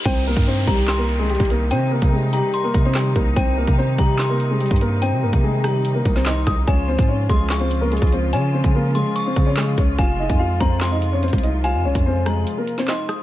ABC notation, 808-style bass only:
X:1
M:4/4
L:1/16
Q:1/4=145
K:Cphr
V:1 name="808-style bass" clef=bass
C,,3 G,,3 C,,6- C,, C,,3 | C,3 C,4 z3 C,4 C,,2 | C,,3 C,3 C,6- C, G,,3- | G,, C, G,, C,6- C, C,,4 C,,2 |
D,,3 A,,3 D,,6- D,, D,,3 | D,3 D,4 z3 D,4 D,,2 | F,,,3 F,,3 F,,6- F,, C,,3- | C,, F,, C,, F,,4- F,, z8 |]